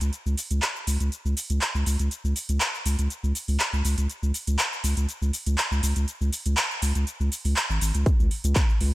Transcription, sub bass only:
0.01 C#2
0.26 C#2
0.51 C#2
0.87 C#2
1.00 C#2
1.25 C#2
1.50 C#2
1.75 C#2
1.86 C#2
1.99 C#2
2.24 C#2
2.49 C#2
2.85 C#2
2.99 C#2
3.23 C#2
3.48 C#2
3.73 C#2
3.85 C#2
3.98 C#2
4.23 C#2
4.47 C#2
4.84 C#2
4.97 C#2
5.22 C#2
5.46 C#2
5.71 C#2
5.83 C#2
5.96 C#2
6.21 C#2
6.46 C#2
6.82 C#2
6.95 C#2
7.20 C#2
7.45 C#2
7.70 G#1
7.81 G#1
7.95 C#2
8.19 C#2
8.44 C#2
8.81 C#2

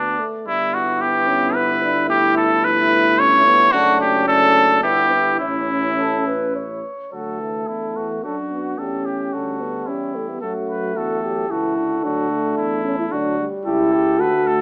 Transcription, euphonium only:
Already playing: B3
0.19 A3
0.46 G3
1.01 B3
1.28 C#4
1.55 B3
1.82 D4
2.10 E4
2.65 E4
3.19 C#4
3.47 B3
3.74 C#4
4.84 B3
5.13 E4
5.41 C#4
7.13 A3
8.24 D4
8.79 C#4
9.61 B3
9.88 C#4
10.15 A3
10.29 B3
10.42 A3
11.49 E4
12.04 D4
12.85 C#4
12.99 E4
13.11 D4
13.66 E4
14.20 F#4

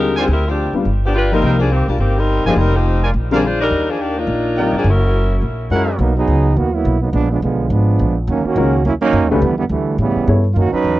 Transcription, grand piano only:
Already playing: D3 G3 C4 F4
0.74 G3 B3 D4 F4
1.32 F3 A#3 D#4 A#4
1.44 F3 A#3 D#4 G4
2.47 F3 A#3 D#4 G4
3.31 D3 G3 C4 F4
4.59 G3 C4 F4 A#4
5.71 G#3 C#4 F#4 A#4
8.57 G#3 C#4 F#4 A#4
9.31 A3 D4 G4 B4
10.28 B3 E4 A4 C#5

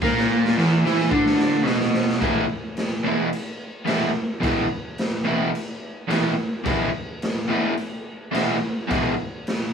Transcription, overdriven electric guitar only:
0.02 A#2 A#3
0.57 E2 E3
0.85 E3 E4
1.11 D3 D4
1.66 B2 B3
2.20 E2 B2 E3 G#3 B3 E4
3.04 E2 B2 E3 G#3 B3 E4
3.85 E2 B2 E3 G#3 B3 E4
4.40 E2 B2 E3 G#3 B3 E4
5.25 E2 B2 E3 G#3 B3 E4
6.08 E2 B2 E3 G#3 B3 E4
6.64 E2 B2 E3 G#3 B3
6.68 E4
7.48 E2 B2 E3 G#3 B3 E4
8.32 E2 B2 E3 G#3 B3 E4
8.88 E2 B2 E3 G#3 B3 E4

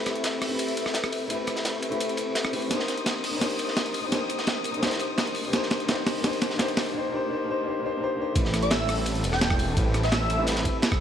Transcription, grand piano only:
Already playing: A3 C4 E4 G4 B4
0.47 A3 C4 E4
0.52 G4 B4
1.27 A3 C4 E4
1.31 G4 B4
1.90 A3 C4 E4 G4 B4
2.52 A3 C4 E4 G4 B4
2.68 A#3 D4 D#4
2.73 G4 C5
3.30 A#3 D4 D#4
3.35 A#3 G4 C5
3.40 D4 D#4 G4
3.45 C5
4.00 A#3 D4 D#4
4.05 A#3 G4 C5
4.10 D4 D#4 G4
4.15 C5
4.71 A#3 D4 D#4
4.76 A#3 G4 C5
4.81 D4 D#4 G4
4.86 C5
5.41 A#3 D4 D#4
5.46 G4 C5
5.50 A#3 D4 D#4
5.55 G4 C5
5.85 A#3 D4 D#4
5.90 G4 C5
6.21 A#3 D4 D#4
6.25 G4 C5
6.56 A#3 D4 D#4
6.61 G4 C5
6.91 A#3 D4 D#4
6.96 G4 C5
7.09 A#3 D4 D#4
7.14 G4 C5
7.27 A#3 D4 D#4
7.31 G4 C5
7.44 A#3 D4 D#4
7.49 G4 C5
7.62 A#3 D4 D#4
7.67 G4 C5
7.80 A#3 D4 D#4
7.84 G4 C5
7.97 A#3 D4 D#4
8.02 G4 C5
8.15 A#3 D4 D#4
8.20 G4 C5
8.33 A3 C4 E4
8.37 G4 B4
8.94 A3 C4 E4
8.99 G4 B4
9.74 A3 C4 E4
9.79 G4 B4
10.37 A3 C4 E4 G4 B4
10.62 A3 C4 E4
10.67 G4 B4

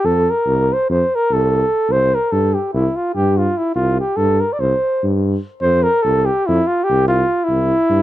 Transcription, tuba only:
0.04 F2
0.47 C2
0.89 F2
1.30 C2
1.89 C2
2.33 G2
2.74 C2
3.17 G2
3.75 C2
4.18 G2
4.60 C2
5.04 G2
5.62 F2
6.05 C2
6.48 F2
6.90 C2
7.49 C2
7.90 G2

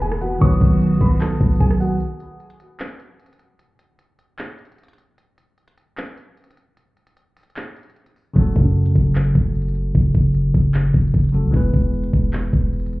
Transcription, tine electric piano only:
Already playing: E3 B3 E4 B4
0.39 D#3 F#3 B3 F#4
0.44 B4
8.33 C#3 F#3 A3 F#4
8.39 A4
11.32 C#3 F#3 A3 F#4 A4
11.51 E3 G#3 B3 G#4
11.56 B4

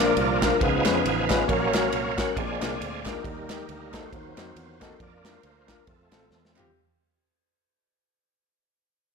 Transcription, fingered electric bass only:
Already playing: A#1
0.17 C2
0.61 C#2
0.86 F2
1.05 A1
1.49 A#1
1.93 C2
2.37 A#1
2.62 C2
2.81 D2
3.24 D#2
3.69 D2
4.13 D#2
4.38 F2
4.56 E2
5.00 F2
5.43 D2
5.87 F2
6.12 A1
6.30 E2

